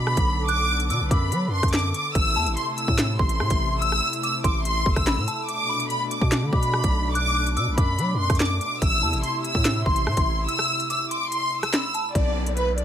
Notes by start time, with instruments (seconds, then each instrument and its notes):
Already playing: 808-style bass B2, analog synth pad D3 B3 A4, violin section B5, synth bell D6
0.07 cross-stick
0.17 808-style bass B1, kick, closed hi-hat
0.48 violin section D6, synth bell F#6, closed hi-hat
0.80 closed hi-hat
0.90 808-style bass B2, violin section D6, synth bell E6, closed hi-hat
1.01 808-style bass B1
1.11 808-style bass F#2, violin section B5, synth bell D6, kick, closed hi-hat
1.32 808-style bass F#3, closed hi-hat
1.47 808-style bass F#2
1.52 violin section C6
1.63 808-style bass F#2, kick, cross-stick, closed hi-hat
1.68 closed hi-hat
1.73 violin section D6, snare, clap, closed hi-hat
1.79 closed hi-hat
1.94 violin section D6, closed hi-hat
2.15 808-style bass A1, analog synth pad C3 A3 E4, violin section E6, kick, closed hi-hat
2.36 808-style bass E2, synth bell A5
2.46 808-style bass A1, closed hi-hat
2.57 violin section C6, closed hi-hat
2.78 violin section E6, closed hi-hat
2.88 808-style bass A2, kick
2.98 snare, clap, closed hi-hat
3.19 808-style bass A1, synth bell C6, violin section C6, kick
3.29 closed hi-hat
3.40 808-style bass A2, cross-stick
3.50 808-style bass A1, kick, closed hi-hat
3.82 violin section E6, synth bell E6, closed hi-hat
3.92 cross-stick
4.13 closed hi-hat
4.23 synth bell D6, violin section E6, closed hi-hat
4.44 808-style bass A1, synth bell C6, violin section D6, kick, closed hi-hat
4.65 violin section C6, closed hi-hat
4.86 808-style bass G1, kick
4.96 808-style bass A1, violin section E6, kick, cross-stick, closed hi-hat
5.07 synth bell B5, snare, clap, closed hi-hat
5.17 808-style bass A2
5.28 synth bell A5, closed hi-hat
5.48 analog synth pad B2 D4, violin section D6, closed hi-hat
5.69 synth bell B5
5.80 closed hi-hat
5.90 violin section B5, closed hi-hat
6.11 violin section D6, closed hi-hat
6.21 808-style bass B2, kick
6.32 snare, clap, closed hi-hat
6.42 808-style bass D3
6.53 808-style bass B2, violin section B5, synth bell D6, kick
6.63 closed hi-hat
6.74 cross-stick
6.84 808-style bass B1, kick, closed hi-hat
7.15 violin section D6, synth bell F#6, closed hi-hat
7.46 closed hi-hat
7.57 808-style bass B2, violin section D6, synth bell E6, closed hi-hat
7.67 808-style bass B1
7.78 808-style bass F#2, violin section B5, synth bell D6, kick, closed hi-hat
7.99 808-style bass F#3, closed hi-hat
8.14 808-style bass F#2
8.19 violin section C6
8.30 808-style bass F#2, kick, cross-stick, closed hi-hat
8.35 closed hi-hat
8.40 violin section D6, snare, clap, closed hi-hat
8.45 closed hi-hat
8.61 violin section D6, closed hi-hat
8.82 808-style bass A1, analog synth pad C3 E4, violin section E6, kick, closed hi-hat
9.03 808-style bass E2, synth bell A5
9.13 808-style bass A1, closed hi-hat
9.23 violin section C6, closed hi-hat
9.44 violin section E6, closed hi-hat
9.55 808-style bass A2, kick
9.65 snare, clap, closed hi-hat
9.86 808-style bass A1, synth bell C6, violin section C6, kick
9.96 closed hi-hat
10.07 808-style bass A2, cross-stick
10.17 808-style bass A1, kick, closed hi-hat
10.48 violin section E6, synth bell E6, closed hi-hat
10.59 cross-stick
10.80 closed hi-hat
10.90 synth bell D6, violin section E6, closed hi-hat
11.11 synth bell C6, violin section D6, closed hi-hat
11.31 violin section C6, closed hi-hat
11.63 violin section E6, cross-stick, closed hi-hat
11.73 synth bell B5, snare, clap, closed hi-hat
11.94 synth bell A5, closed hi-hat
12.15 808-style bass B1, violin section D5, kick, closed hi-hat, downlifter
12.46 closed hi-hat
12.56 violin section B4, closed hi-hat
12.78 violin section D5, closed hi-hat